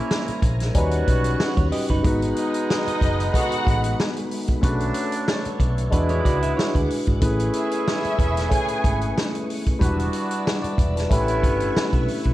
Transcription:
Already playing: A#3 C#4 E4 G#4 A#4 C5 G#5 A#5
0.11 snare
0.28 muted fingered electric bass stroke, closed hi-hat
0.42 A#1, kick, closed hi-hat
0.60 snare, closed hi-hat
0.75 D#2 G3 B3 C#4 D#4 F#4 B4 F#5 C#6, kick, closed hi-hat
0.91 closed hi-hat
1.08 B1, kick, closed hi-hat
1.24 closed hi-hat
1.40 snare
1.57 D#2 C#5, kick, closed hi-hat
1.72 G4 D#5, open hi-hat
1.89 F#1 D#4 B4, kick, closed hi-hat
2.03 G#1 G#3 B3 D#4 F#4 G#4 B4 F#5 B5, kick, closed hi-hat
2.22 closed hi-hat
2.36 D#4 D#5, closed hi-hat
2.54 closed hi-hat
2.69 D#4 D#5, snare
2.87 muted fingered electric bass stroke, closed hi-hat
3.01 F#1, kick, closed hi-hat
3.20 closed hi-hat
3.33 G#3 B3 D#4 F#4 A4 F#5, kick, closed hi-hat
3.43 B4
3.52 closed hi-hat
3.67 A1, kick, closed hi-hat
3.84 closed hi-hat
4.00 snare
4.16 closed hi-hat
4.31 open hi-hat
4.48 kick, closed hi-hat
4.61 B1 F#3 A3 C#4 D4 F#4 A4 B4 C#5 C#6, kick, closed hi-hat
4.80 closed hi-hat
4.94 closed hi-hat
5.12 closed hi-hat
5.28 snare
5.45 muted fingered electric bass stroke, closed hi-hat
5.60 B1, kick, closed hi-hat
5.78 closed hi-hat
5.90 E2 G#3 B3 D4 E4 F#4 G#4 B4 F#5 D6, kick, closed hi-hat
6.09 E4 C#5, closed hi-hat
6.25 C#2 F#4 D5, kick, closed hi-hat
6.42 G#4 E5, closed hi-hat
6.57 E4 C#5, snare
6.75 D2 D4 B4, kick, closed hi-hat
6.90 open hi-hat
7.07 G#1, kick, closed hi-hat
7.20 A1 A3 C#4 E4 G#4 B4 G#5 C#6, kick, closed hi-hat
7.39 closed hi-hat
7.53 E4 E5, closed hi-hat
7.71 closed hi-hat
7.86 E4 E5, snare
8.04 muted fingered electric bass stroke, closed hi-hat
8.19 E1, kick, closed hi-hat
8.37 snare, closed hi-hat
8.49 A3 C#4 E4 G#4 B4 G#5, kick, closed hi-hat
8.68 closed hi-hat
8.84 G#1, kick, closed hi-hat
9.01 closed hi-hat
9.18 snare
9.35 closed hi-hat
9.50 open hi-hat
9.66 kick, closed hi-hat
9.79 E1 G3 B3 D4 E4 F#4 B4 D5 E5 E6, kick, closed hi-hat
9.99 closed hi-hat
10.13 closed hi-hat
10.31 closed hi-hat
10.45 D4 B4, snare
10.62 F#4 D5, muted fingered electric bass stroke, closed hi-hat
10.78 E1, kick, closed hi-hat
10.96 D4 B4, snare, closed hi-hat
11.09 A1 A3 B3 C#4 E4 G4 B4 C#6, kick, closed hi-hat
11.28 closed hi-hat
11.43 G1, kick, closed hi-hat
11.60 closed hi-hat
11.77 muted fingered electric bass stroke, snare
11.93 B1, kick, closed hi-hat
12.08 open hi-hat
12.24 B1, kick, closed hi-hat

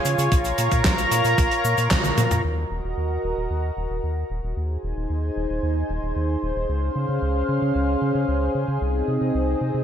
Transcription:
Already playing: F4 G#4 C#5 G#5
0.05 C#3, closed hi-hat, cabasa
0.18 C#3, closed hi-hat, cabasa
0.32 A#1 A#4 A#5, kick, closed hi-hat, cabasa
0.45 closed hi-hat, cabasa
0.58 A#2, closed hi-hat, cabasa
0.71 A#2, kick, closed hi-hat, cabasa
0.84 A#1, kick, snare, clap, closed hi-hat, cabasa
0.98 closed hi-hat, cabasa
1.11 A#2, closed hi-hat, cabasa
1.24 A#2, closed hi-hat, cabasa
1.38 A#1, kick, closed hi-hat, cabasa
1.51 closed hi-hat
1.65 A#2, cabasa
1.78 A#2, closed hi-hat, cabasa
1.91 A#1, kick, snare, clap, closed hi-hat, high tom, cabasa
2.04 closed hi-hat, high tom, cabasa
2.18 A#2, closed hi-hat, mid tom, cabasa
2.31 A#2, closed hi-hat, mid tom, cabasa
2.44 D#2 F#4 A#4 D#5 A#5
2.71 D#1
2.84 D#1
2.97 D#2
3.24 D#1
3.37 D#1
3.50 D#2
3.77 D#1
3.90 D#1
4.03 D#2
4.30 D#1
4.43 D#1
4.56 D#2 D#4 G#4 C5 G#5
4.83 D#1
4.96 D#1
5.10 D#2
5.36 D#1
5.50 D#1
5.63 D#2
5.89 D#1
6.03 D#1
6.16 D#2
6.42 D#1
6.56 D#1
6.69 C#2 C#4 F5
6.96 C#3
7.09 C#3
7.22 C#2
7.49 C#3
7.62 C#3
7.75 C#2
8.02 C#3
8.15 C#3
8.28 C#2
8.55 C#3
8.68 C#3
8.81 C2 C4 D#4 D#5
9.08 C3
9.21 C3
9.35 C2
9.61 C3
9.74 C3

